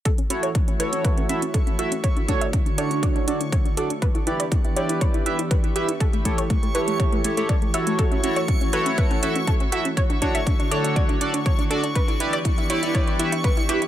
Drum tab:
HH |xxxxxxxxxxxxxxxx|xxxxxxxxxxxxxxxx|xxxxxxxxxxxxxxxx|xxxxxxxxxxxxxxxx|
BD |o---o---o---o---|o-o-o---o---o---|o---o---o---o---|o-o-o---o---o---|

HH |xxxxxxxxxxxxxxxx|xxxxxxxxxxxxxxxx|xxxxxxxxxxxxxxxx|
BD |o---o---o---o---|o-o-o---o---o---|o---o---o---o---|